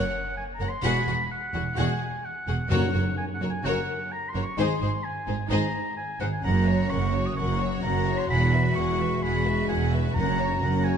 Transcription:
Already playing: viola section A#4, violin section C#5 F#5, oboe F#5
0.37 oboe G#5
0.55 oboe A#5
0.60 double bass section F#1, cello section F#2, viola section A#4, violin section C#5 F#5
0.69 oboe C6
0.83 double bass section E1, cello section E2, french horn section G#3 F#4, viola section F#4, violin section G#4 F#5, oboe B5
1.07 double bass section E1, cello section E2, viola section F#4, violin section G#4 F#5
1.31 oboe F#5
1.53 double bass section E1, cello section E2, viola section F#4, violin section G#4 F#5
1.77 double bass section E1, cello section E2, french horn section G#3 F#4, viola section F#4, violin section G#4 F#5, oboe G#5
2.25 oboe F#5
2.48 double bass section E1, cello section E2, viola section F#4, violin section G#4 F#5
2.70 double bass section F#1, cello section F#2, timpani F#2, french horn section A#3 F#4, viola section F#4, violin section A#4 C#5, oboe F#5
2.94 double bass section F#1, cello section F#2, viola section F#4, violin section A#4 C#5
3.17 oboe G#5
3.34 oboe F#5
3.40 double bass section F#1, cello section F#2, viola section F#4, violin section A#4 C#5
3.50 oboe G#5
3.64 double bass section F#1, cello section F#2, french horn section A#3 F#4, viola section F#4, violin section A#4 C#5, oboe F#5
4.12 oboe A#5
4.29 oboe C6
4.34 double bass section F#1, cello section F#2, viola section F#4, violin section A#4 C#5
4.43 oboe C#6
4.57 double bass section G#1, cello section G#2, french horn section G#3 D#4, viola section D#4, violin section G#4 C5, oboe C6
4.81 double bass section G#1, cello section G#2, viola section D#4, violin section G#4 C5
5.04 oboe G#5
5.27 double bass section G#1, cello section G#2, viola section D#4, violin section G#4 C5
5.50 double bass section G#1, cello section G#2, french horn section G#3 D#4, viola section D#4, violin section G#4 C5, oboe A#5
5.97 oboe G#5
6.20 double bass section G#1, cello section G#2, viola section D#4, violin section G#4 C5, oboe F#5
6.33 oboe G#5
6.43 double bass section F#1, cello section F#2, french horn section F#3 F#4, viola section C#4, violin section A#4 F#5, oboe A#5
6.66 viola section F#4, violin section C#5
6.90 double bass section F#1, cello section F#2, viola section C#4, violin section A#4 F#5, oboe C#6
7.12 viola section F#4, violin section C#5
7.26 oboe D#6
7.36 double bass section F#1, cello section F#2, viola section C#4, violin section A#4 F#5, oboe C#6
7.59 viola section F#4, violin section C#5
7.83 double bass section F#1, cello section F#2, viola section C#4, violin section A#4 F#5, oboe A#5
8.06 viola section F#4, violin section C#5
8.18 oboe C6
8.28 double bass section E1, cello section E2, french horn section G#3, viola section E4, violin section G#4 F#5, oboe B5
8.52 viola section F#4, violin section B4 E5
8.75 double bass section E1, cello section E2, viola section E4, violin section G#4 F#5, oboe C#6
9.00 viola section F#4, violin section B4 E5
9.22 double bass section E1, cello section E2, viola section E4, violin section G#4 F#5, oboe B5
9.46 viola section F#4, violin section B4 E5
9.68 double bass section E1, cello section E2, viola section E4, violin section G#4 F#5, oboe G#5
9.93 viola section F#4, violin section B4 E5
10.14 double bass section F#1, timpani F#2, cello section F#2, french horn section C#4 F#4, viola section C#4, violin section A#4 F#5, oboe A#5
10.39 viola section F#4, violin section C#5
10.62 double bass section F#1, cello section F#2, viola section C#4, violin section A#4 F#5
10.84 viola section F#4, violin section C#5, oboe G#5

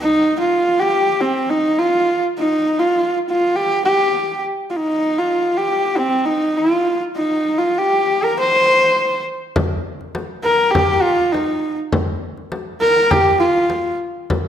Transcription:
0.00 horsehead fiddle D#4
0.39 horsehead fiddle F4
0.79 horsehead fiddle G4
1.20 horsehead fiddle C4
1.50 horsehead fiddle D#4
1.79 horsehead fiddle F4
2.38 horsehead fiddle D#4
2.79 horsehead fiddle F4
3.29 horsehead fiddle F4
3.56 horsehead fiddle G4
3.84 horsehead fiddle G4
4.70 horsehead fiddle F4
4.76 horsehead fiddle D#4
5.19 horsehead fiddle F4
5.57 horsehead fiddle G4
5.97 horsehead fiddle C4
6.26 horsehead fiddle D#4
6.57 horsehead fiddle F4
7.16 horsehead fiddle D#4
7.58 horsehead fiddle F4
7.78 horsehead fiddle G4
8.24 horsehead fiddle A#4
8.40 horsehead fiddle C5
9.56 frame drum
10.01 frame drum
10.15 frame drum
10.44 horsehead fiddle A#4, frame drum
10.71 horsehead fiddle G4
10.75 frame drum
11.02 horsehead fiddle F4
11.19 frame drum
11.32 horsehead fiddle D#4, frame drum
11.92 frame drum
12.37 frame drum
12.52 frame drum
12.81 horsehead fiddle A#4, frame drum
13.10 horsehead fiddle G4, frame drum
13.40 horsehead fiddle F4
13.56 frame drum
13.70 frame drum
14.30 frame drum

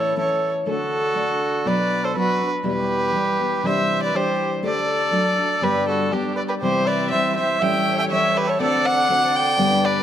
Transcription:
Already playing: nylon-string guitar A2 E3 A3 C#4 E4, trumpet A4, violin C#5
0.16 nylon-string guitar E3 A3 C#4 E4, trumpet A4, violin C#5
0.66 nylon-string guitar D3 A3 D4 F#4, trumpet F#4, violin A4
1.15 nylon-string guitar D3 A3 D4 F#4
1.66 nylon-string guitar B2 F#3 B3 D4 F#4, trumpet B4, violin D5
2.04 trumpet A4, violin C5
2.15 nylon-string guitar F#3 B3 D4 F#4, trumpet F#4, violin B4
2.40 nylon-string guitar D4 F#4
2.63 nylon-string guitar E2 B2 E3 G3 B3 G4, violin B4
2.69 trumpet G4
3.14 nylon-string guitar E3 G3 B3 G4
3.40 nylon-string guitar E3 G3 B3 G4
3.63 nylon-string guitar C3 E3 G3 D4 G4, trumpet C5, violin E5
4.03 trumpet B4, violin D5
4.13 nylon-string guitar E3 G3 D4 G4, trumpet G4, violin C5
4.63 nylon-string guitar D3 A3 D4 G4, trumpet A4, violin D5
5.11 nylon-string guitar F#3 A3 D4 F#4
5.36 nylon-string guitar A3 D4 F#4
5.62 nylon-string guitar G2 D3 G3 B3 D4 G4, trumpet G4, violin B4
5.88 trumpet F#4, violin A4
6.12 nylon-string guitar G3 B3 D4 G4, trumpet D4, violin G4
6.35 trumpet B4, violin D5
6.48 trumpet G4, violin B4
6.60 nylon-string guitar C3 E3 G3 C4 E4, violin section C4 G4 E5, trumpet G4, violin C5
6.86 trumpet B4, violin D5
7.11 nylon-string guitar E3 G3 C4 E4, trumpet C5, violin E5
7.35 nylon-string guitar G3 C4 E4, trumpet C5, violin E5
7.60 nylon-string guitar A2 E3 G3 C#4 E4, violin section A3 G4 C#5, trumpet E5, violin G5
7.98 trumpet E5, violin G5
8.10 nylon-string guitar E3 G3 C#4 E4, trumpet C#5, violin E5
8.36 trumpet G4, violin B4
8.47 trumpet A4, violin C#5
8.59 nylon-string guitar D3 A3 C4 F#4, violin section D4 C5 F#5, trumpet A4, violin D5
8.85 trumpet D5, violin F#5
9.09 nylon-string guitar D3 A3 C4 F#4
9.35 trumpet D5, violin G5
9.58 nylon-string guitar G2 D3 G3 B3 D4 G4, violin section G3 D4 B4
9.85 trumpet B4, violin D5

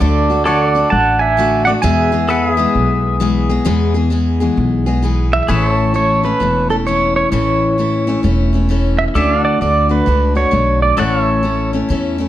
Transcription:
0.00 upright bass D2, steel-string acoustic guitar D3 A3 D4 F#4, pedal steel guitar A4 D5
0.30 steel-string acoustic guitar A3 D4 F#4
0.45 steel-string acoustic guitar D3 A3 D4 F#4, pedal steel guitar A4 C#5 D5 F#5
0.67 pedal steel guitar D5
0.75 steel-string acoustic guitar A3 D4 F#4
0.90 upright bass A1, pedal steel guitar F#5 A5
1.19 pedal steel guitar E5 G#5
1.37 steel-string acoustic guitar D3 A3 D4 F#4
1.65 steel-string acoustic guitar A3 D4 F#4, pedal steel guitar D5 F#5
1.82 steel-string acoustic guitar E2 B2 E3 G#3 B3 G#4, upright bass E2, pedal steel guitar E5 G#5
2.12 steel-string acoustic guitar E3 G#3 B3 G#4
2.28 steel-string acoustic guitar E3 G#3 B3 G#4, pedal steel guitar A4 B4 F#5
2.49 pedal steel guitar G#4
2.55 steel-string acoustic guitar E3 G#3 B3 G#4, pedal steel guitar E5
2.75 upright bass B1
3.20 steel-string acoustic guitar E3 G#3 B3 G#4
3.49 steel-string acoustic guitar E3 G#3 B3 G#4
3.65 steel-string acoustic guitar E2 B2 E3 G#3 B3 G#4, upright bass E2
3.94 steel-string acoustic guitar E3 G#3 B3 G#4
4.10 steel-string acoustic guitar E3 G#3 B3 G#4
4.40 steel-string acoustic guitar E3 G#3 B3 G#4
4.57 upright bass B1
4.86 steel-string acoustic guitar E3 G#3 B3 G#4
5.02 steel-string acoustic guitar E3 G#3 B3 G#4
5.33 pedal steel guitar E5
5.48 upright bass A1, steel-string acoustic guitar A2 E3 A3 C#4 E4, pedal steel guitar G#4 B4 C#5 E5
5.69 pedal steel guitar A4
5.75 pedal steel guitar C#5
5.94 steel-string acoustic guitar E3 A3 C#4 E4, pedal steel guitar C#5
6.23 steel-string acoustic guitar A3 C#4 E4, pedal steel guitar B4
6.40 upright bass E1, steel-string acoustic guitar E3 A3 C#4 E4
6.70 steel-string acoustic guitar A3 C#4 E4, pedal steel guitar A4
6.86 steel-string acoustic guitar E3 A3 C#4 E4, pedal steel guitar C#5
7.16 pedal steel guitar C#5
7.32 upright bass A1, steel-string acoustic guitar A2 E3 A3 C#4 E4, pedal steel guitar C#5
7.78 steel-string acoustic guitar E3 A3 C#4 E4
8.07 steel-string acoustic guitar A3 C#4 E4
8.23 upright bass E1, steel-string acoustic guitar E3 A3 C#4 E4
8.53 steel-string acoustic guitar A3 C#4 E4
8.69 steel-string acoustic guitar E3 A3 C#4 E4
8.99 pedal steel guitar E5
9.15 upright bass D2, steel-string acoustic guitar D3 A3 D4 F#4, pedal steel guitar C#4 A4 D5 E5
9.36 pedal steel guitar D4
9.42 pedal steel guitar D5 F#5
9.61 upright bass D2, steel-string acoustic guitar D3 A3 D4 F#4, pedal steel guitar D5
9.89 steel-string acoustic guitar A3 D4 F#4, pedal steel guitar B4
10.06 upright bass C#2, steel-string acoustic guitar D3 A3 D4 F#4
10.35 steel-string acoustic guitar A3 D4 F#4, pedal steel guitar C#5
10.51 upright bass B1, steel-string acoustic guitar D3 A3 D4 F#4
10.82 pedal steel guitar D5
10.97 upright bass A1, steel-string acoustic guitar A2 E3 A3 C#4 E4, pedal steel guitar A4 C#5 D5 F#5
11.19 pedal steel guitar C#5
11.24 pedal steel guitar E5
11.43 steel-string acoustic guitar E3 A3 C#4 E4
11.73 steel-string acoustic guitar A3 C#4 E4
11.89 upright bass E2, steel-string acoustic guitar E3 A3 C#4 E4
12.18 steel-string acoustic guitar A3 C#4 E4

